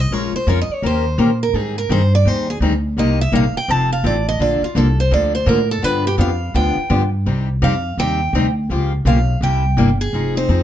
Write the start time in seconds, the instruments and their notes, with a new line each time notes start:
0.00 steel-string acoustic guitar D#5
0.11 upright bass A#1, steel-string acoustic guitar F3 G#3 C#4 F4 A#4 C#5
0.33 steel-string acoustic guitar C5, muted upright bass stroke
0.47 upright bass F2, steel-string acoustic guitar F3 G#3 C#4 F4 A#4 C#5
0.61 steel-string acoustic guitar D#5
0.69 muted upright bass stroke
0.74 steel-string acoustic guitar C#5
0.82 upright bass D#2, steel-string acoustic guitar D#3 A#3 C#4 G4 A#4 C5
1.18 upright bass A#2, steel-string acoustic guitar D#3 A#3 C#4 G4 A#4
1.43 steel-string acoustic guitar A#4
1.53 upright bass G#2, steel-string acoustic guitar D#3 G3 C4 D#4 G#4
1.78 steel-string acoustic guitar A#4
1.89 upright bass G2, steel-string acoustic guitar D#3 G3 C4 D#4 G#4 C5
2.15 steel-string acoustic guitar D5
2.25 upright bass D#2, steel-string acoustic guitar D#3 G3 C4 D#4 G#4 C5
2.50 steel-string acoustic guitar G#4
2.60 upright bass D2, steel-string acoustic guitar D#3 G3 C4 D#4 G#4
2.97 upright bass C2, steel-string acoustic guitar C3 G3 A#3 D#4 G4 D#5
3.21 steel-string acoustic guitar E5
3.32 upright bass A#1, steel-string acoustic guitar C3 G3 A#3 D#4 G4 F5
3.54 steel-string acoustic guitar G5, muted upright bass stroke
3.68 upright bass F1, steel-string acoustic guitar F3 C4 D#4 A4 A5
3.93 steel-string acoustic guitar F5
4.04 upright bass A1, steel-string acoustic guitar F3 C4 D#4 A4 D5
4.29 steel-string acoustic guitar D#5
4.40 upright bass A#1, steel-string acoustic guitar D3 F3 A#3 D4 A4 D5
4.61 steel-string acoustic guitar F4, muted upright bass stroke
4.75 upright bass C2, steel-string acoustic guitar D3 F3 A#3 D4 A4
5.00 steel-string acoustic guitar C5
5.11 upright bass D2, steel-string acoustic guitar D3 F3 A#3 D4 A4 D5
5.35 steel-string acoustic guitar C5
5.46 upright bass A2, steel-string acoustic guitar D3 F3 A#3 D4 A4 A#4
5.71 steel-string acoustic guitar A4
5.82 upright bass G2, steel-string acoustic guitar D3 F3 B3 D4 G4 B4
6.07 steel-string acoustic guitar G4
6.18 upright bass F2, steel-string acoustic guitar D3 F3 B3 D4 G4 F5
6.54 upright bass D2, steel-string acoustic guitar D3 F3 B3 D4 G4 G5
6.77 muted upright bass stroke
6.90 upright bass G2, steel-string acoustic guitar D3 F3 B3 D4 G4
7.26 upright bass C2, steel-string acoustic guitar C3 G3 C4 D#4 G4
7.62 upright bass F2, steel-string acoustic guitar C3 G3 C4 D#4 G4 F5
7.97 upright bass D#2, steel-string acoustic guitar C3 G3 C4 D#4 G4 G5
8.33 upright bass D2, steel-string acoustic guitar C3 G3 C4 D#4 G4
8.69 upright bass C#2, steel-string acoustic guitar C#3 F3 A#3 F4 G4
9.05 upright bass B1, steel-string acoustic guitar C#3 F3 A#3 F4 G4 F5
9.41 upright bass C2, steel-string acoustic guitar C3 G3 A#3 E4 G4 G5
9.77 upright bass G1, steel-string acoustic guitar C3 G3 A#3 E4 G4
10.01 steel-string acoustic guitar G#4
10.13 upright bass F1, steel-string acoustic guitar F3 C4 D#4 G#4
10.35 steel-string acoustic guitar C4 D#4 G#4 C5
10.49 upright bass F2, steel-string acoustic guitar F3 C4 D#4 G#4